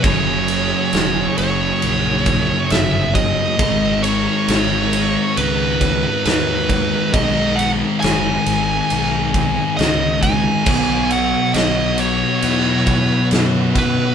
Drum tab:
CC |--------|--------|--------|x-------|
RD |xxxxxxxx|xxxxxxxx|xxxxxxxx|-xxxxxxx|
SD |--o---o-|--o---o-|--o---o-|--o---o-|
BD |o----o-o|o----o-o|o----o-o|o----o-o|